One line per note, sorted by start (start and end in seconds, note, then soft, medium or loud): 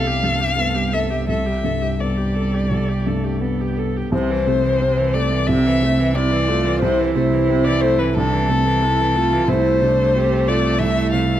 0.00 1.28 C2 medium
0.00 4.08 C2 medium
0.00 0.23 G2 medium
0.00 0.58 B3 medium
0.00 0.94 A4 medium
0.00 0.95 F5 loud
0.07 0.26 G3 medium
0.07 0.25 G4 medium
0.23 0.79 G2 medium
0.23 0.43 A3 medium
0.23 0.41 A4 medium
0.40 0.58 G3 medium
0.40 0.57 G4 medium
0.58 0.77 A3 medium
0.58 1.14 B3 medium
0.58 0.76 A4 medium
0.75 0.95 G3 medium
0.75 0.94 G4 medium
0.92 1.12 A3 medium
0.92 1.11 A4 medium
0.92 1.50 A4 medium
0.92 1.28 E5 loud
1.10 1.28 G3 medium
1.10 1.27 G4 medium
1.28 2.67 C2 medium
1.28 1.48 A3 medium
1.28 1.47 A4 medium
1.28 2.02 E5 medium
1.46 1.65 G3 medium
1.46 1.66 G4 medium
1.64 2.21 G2 soft
1.64 1.83 A3 soft
1.64 1.83 A4 soft
1.81 1.99 G3 medium
1.81 1.98 G4 soft
1.99 3.07 G3 medium
1.99 2.57 B3 soft
1.99 2.18 A4 medium
1.99 3.77 D5 medium
2.17 2.36 G4 soft
2.35 2.55 A4 medium
2.35 2.92 A4 soft
2.53 2.70 G4 soft
2.70 4.08 C2 soft
2.70 2.90 A4 medium
2.88 3.08 G4 soft
3.06 3.63 G2 soft
3.06 3.42 A3 medium
3.06 3.25 A4 soft
3.24 3.41 G4 medium
3.41 4.12 B3 medium
3.41 3.98 B3 soft
3.41 3.62 A4 soft
3.61 3.80 G4 soft
3.77 4.12 A4 soft
3.77 3.98 A4 medium
3.96 4.13 G4 soft
4.12 5.43 C2 medium
4.12 9.44 C2 medium
4.12 4.32 C3 medium
4.12 5.15 C5 loud
4.30 4.48 E3 medium
4.47 5.01 C3 medium
4.47 4.65 A3 medium
4.63 4.82 E3 medium
4.81 4.99 C3 medium
4.81 5.35 C4 medium
4.97 5.16 E3 medium
5.13 5.33 A3 medium
5.13 5.68 A4 medium
5.13 5.48 D5 loud
5.32 5.48 E3 medium
5.47 6.78 C2 medium
5.47 5.68 C3 medium
5.47 6.17 C4 medium
5.47 6.17 E5 loud
5.66 5.84 E3 medium
5.81 6.35 C3 medium
5.81 6.00 A3 medium
5.99 6.17 E3 medium
6.14 6.33 C3 medium
6.14 6.68 C4 medium
6.14 6.50 E4 medium
6.14 6.81 D5 loud
6.31 6.50 E3 medium
6.48 6.67 A3 medium
6.48 6.83 F4 medium
6.48 7.02 A4 medium
6.66 6.81 E3 medium
6.82 8.11 C2 medium
6.82 7.00 C3 medium
6.82 8.17 E4 loud
6.82 7.14 C5 loud
6.99 7.17 E3 medium
7.14 7.69 C3 medium
7.14 7.34 A3 medium
7.14 7.66 C5 loud
7.33 7.52 E3 medium
7.50 7.68 C3 medium
7.50 8.02 C4 medium
7.64 7.84 E3 medium
7.64 7.83 D5 loud
7.81 8.01 A3 medium
7.81 8.35 A4 medium
7.81 8.00 C5 loud
7.98 8.15 E3 medium
7.98 8.16 B4 loud
8.14 9.44 C2 medium
8.14 8.34 C3 medium
8.14 8.51 D4 medium
8.14 9.49 A4 loud
8.33 8.51 E3 medium
8.49 9.02 C3 medium
8.49 8.67 A3 medium
8.49 8.84 C4 medium
8.65 8.84 E3 medium
8.82 9.01 C3 medium
8.82 9.35 C4 medium
8.82 9.15 E4 medium
9.00 9.18 E3 medium
9.15 9.35 A3 medium
9.15 9.50 F4 loud
9.15 9.48 A4 medium
9.33 9.48 E3 medium
9.48 10.75 C2 medium
9.48 11.40 C2 medium
9.48 11.40 A3 medium
9.48 9.85 E4 loud
9.48 10.49 C5 loud
9.82 10.34 C3 medium
9.82 10.19 D4 medium
10.15 10.67 C4 medium
10.15 10.51 G4 medium
10.47 10.82 F4 medium
10.47 10.99 A4 medium
10.47 10.80 D5 loud
10.79 11.40 C2 medium
10.79 11.40 E4 medium
10.79 11.11 E5 loud
11.12 11.40 C3 medium
11.12 11.40 F5 loud